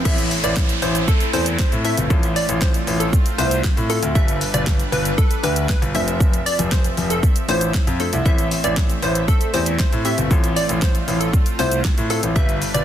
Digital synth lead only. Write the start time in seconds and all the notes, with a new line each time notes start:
0.05 E5
0.44 D5
0.82 C5
1.08 A4
1.34 C5
1.59 C5
1.85 E5
2.36 D5
2.62 C5
3.00 A4
3.38 C5
3.90 A4
4.15 E5
4.54 D5
4.92 B4
5.18 A4
5.44 B4
5.69 B4
5.95 E5
6.46 D5
6.72 C5
7.10 A4
7.49 C5
8.00 A4
8.26 E5
8.64 D5
9.03 C5
9.28 A4
9.54 C5
9.80 C5
10.05 E5
10.56 D5
10.82 C5
11.20 A4
11.59 C5
12.10 A4
12.36 E5
12.74 D5